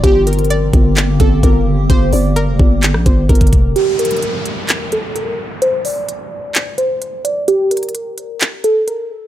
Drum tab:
HH |x---xxxxx---x---x---x---x-------|x---o---x-------x---x---xxxxx---|x---xxxxx---x---x---x---x-------|x---o---x-------x---x---x---x---|
CP |----------------x---------------|----------------x---------------|----------------x---------------|----------------x---------------|
SD |--------------------------------|------------------r-------------|--------------------------------|--------------------------------|
BD |o-----------o-------o---o-------|o-----------o-------o---o-o-o---|--------------------------------|--------------------------------|

HH |x---xxxxx---x---x---x---x-------|
CP |----------------x---------------|
SD |--------------------------------|
BD |--------------------------------|